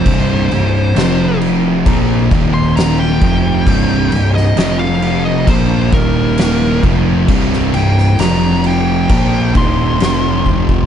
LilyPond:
<<
  \new Staff \with { instrumentName = "Lead electric guitar" } { \time 4/4 \key c \minor \tempo 4 = 66 c''4. r4 r16 c'''16 bes''16 g''8.~ | g''8. ees''8 f''8 ees''16 c''8 bes'4 r8 | r8 g''8 bes''8 g''4 c'''4. | }
  \new Staff \with { instrumentName = "Synth drone" } { \clef bass \time 4/4 \key c \minor <c g d'>4 r2 r8 <c g d'>8~ | <c g d'>4 r2 r8 <c g d'>8~ | <c g d'>4 r2. | }
  \new Staff \with { instrumentName = "Distorted electric guitar" } { \clef bass \time 4/4 \key c \minor <c, g, c>8 <c, g,>8 <f, c f>4 <bes, f bes>8 <ees, bes, ees>4 <f, c f>8 | <c, g, c>8 <c, g,>8 <f, c f>4 <bes, f bes>8 <ees, bes, ees>4 <f, c f>8 | <c, g, c>8 <c, g,>8 <f, c f>4 <bes, f bes>8 <ees, bes, ees>8 <f, c f>4 | }
  \new Staff \with { instrumentName = "Distorted electric guitar" } { \clef bass \time 4/4 \key c \minor <c, g, c>8 <c, g,>8 <f, c f>4 <bes, f bes>8 <ees, bes, ees>4 <f, c f>8 | <c, g, c>8 <c, g,>8 <f, c f>4 <bes, f bes>8 <ees, bes, ees>4 <f, c f>8 | <c, g, c>8 <c, g,>8 <f, c f>4 <bes, f bes>8 <ees, bes, ees>8 <f, c f>4 | }
  \new Staff \with { instrumentName = "Picked electric bass" } { \clef bass \time 4/4 \key c \minor c,,8 c,,8 f,,4 bes,,8 ees,,4 f,,8 | c,,8 c,,8 f,,4 bes,,8 ees,,4 f,,8 | c,,8 c,,8 f,,4 bes,,8 ees,,8 f,,4 | }
  \new DrumStaff \with { instrumentName = "Drums" } \drummode { \time 4/4 <cymc bd>8 cymc8 <cymc sn>8 cymc8 <cymc bd>8 <cymc bd>8 <cymc sn>8 <cymc bd>8 | <cymc bd>8 cymc16 sn16 <cymc sn>8 cymc8 <cymc bd>8 <cymc bd>8 <cymc sn>8 <cymc bd>8 | <cymc bd>16 sn16 cymc16 sn16 <cymc sn>8 cymc8 <cymc bd>8 <cymc bd>8 <cymc sn>8 bd16 bd16 | }
>>